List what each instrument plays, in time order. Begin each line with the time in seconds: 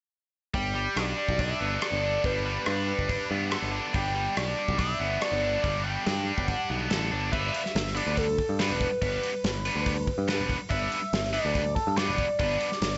0.54 picked electric bass G1, distorted electric guitar G3, analog synth lead G5, kick, open hi-hat
0.75 distorted electric guitar G3
0.96 picked electric bass B1, distorted electric guitar D4, analog synth lead D5, cross-stick, open hi-hat
1.18 distorted electric guitar G3
1.29 picked electric bass B1, kick
1.39 distorted electric guitar D4, analog synth lead E5, kick, open hi-hat
1.60 picked electric bass G1, distorted electric guitar B3
1.81 distorted electric guitar A4, analog synth lead D5, cross-stick, open hi-hat
1.92 picked electric bass G1
2.03 distorted electric guitar D4
2.24 picked electric bass G1, distorted electric guitar G3, analog synth lead B4, kick, open hi-hat
2.45 distorted electric guitar G3, analog synth lead B4
2.66 picked electric bass G2, distorted electric guitar D4, cross-stick, open hi-hat
2.88 distorted electric guitar G3
2.99 picked electric bass G1, kick
3.09 distorted electric guitar D4, kick, open hi-hat
3.29 picked electric bass G2, distorted electric guitar B3
3.50 distorted electric guitar A4, cross-stick, open hi-hat
3.62 picked electric bass G1
3.72 distorted electric guitar D4
3.93 picked electric bass G1, distorted electric guitar G3, analog synth lead G5, kick, open hi-hat
4.15 distorted electric guitar G3
4.37 picked electric bass B1, distorted electric guitar D4, analog synth lead D5, cross-stick, open hi-hat
4.58 distorted electric guitar G3
4.68 picked electric bass B1, kick
4.78 distorted electric guitar D4, analog synth lead E5, kick, open hi-hat
5.00 picked electric bass G1, distorted electric guitar B3
5.21 distorted electric guitar A4, analog synth lead D5, cross-stick, open hi-hat
5.32 picked electric bass G1
5.43 distorted electric guitar D4
5.62 picked electric bass G1, distorted electric guitar G3, analog synth lead D5, kick, open hi-hat
5.84 distorted electric guitar G3, analog synth lead G5
6.06 picked electric bass G2, distorted electric guitar D4, snare, open hi-hat
6.27 distorted electric guitar G3
6.38 picked electric bass G1, analog synth lead F#5, kick
6.48 distorted electric guitar D4, kick, open hi-hat
6.69 picked electric bass B1, distorted electric guitar B3
6.90 picked electric bass A1, distorted electric guitar A4, snare, open hi-hat
7.11 picked electric bass G1, distorted electric guitar D4
7.32 picked electric bass G1, distorted electric guitar G3 B3 D4 B4, analog synth lead E5, kick, crash
7.54 open hi-hat
7.66 snare
7.75 picked electric bass G1, snare, open hi-hat
7.87 snare
7.95 distorted electric guitar G3 B3 D4 B4, analog synth lead D5, open hi-hat
8.07 picked electric bass D2
8.17 analog synth lead A4, kick, open hi-hat
8.38 kick, open hi-hat
8.49 picked electric bass G2
8.59 distorted electric guitar G3 B3 D4 B4, analog synth lead B4, snare, open hi-hat
8.70 picked electric bass E1
8.81 kick, open hi-hat
9.02 picked electric bass G1, distorted electric guitar G3 B3 D4 B4, analog synth lead B4, kick, open hi-hat
9.23 open hi-hat
9.44 picked electric bass G1, snare, open hi-hat
9.65 distorted electric guitar G3 B3 D4 B4, open hi-hat
9.76 picked electric bass D2
9.86 kick, open hi-hat
10.07 kick, open hi-hat
10.18 picked electric bass G2
10.28 distorted electric guitar G3 B3 D4 B4, snare, open hi-hat
10.39 picked electric bass E1
10.49 kick, open hi-hat
10.70 picked electric bass G1, distorted electric guitar G3 B3 D4 B4, analog synth lead E5, kick, open hi-hat
10.92 open hi-hat
11.13 picked electric bass G1, snare, open hi-hat
11.25 snare
11.33 distorted electric guitar G3 B3 D4 B4, analog synth lead D5, open hi-hat
11.45 picked electric bass D2
11.55 kick, open hi-hat
11.75 analog synth lead A4, kick, open hi-hat
11.87 picked electric bass G2
11.96 distorted electric guitar G3 B3 D4 B4, analog synth lead D5, snare, open hi-hat
12.08 picked electric bass E1
12.18 kick, open hi-hat
12.39 picked electric bass G1, distorted electric guitar G3 B3 D4 B4, analog synth lead D5, kick, open hi-hat
12.61 open hi-hat
12.72 snare
12.82 picked electric bass G1, snare, open hi-hat
12.93 snare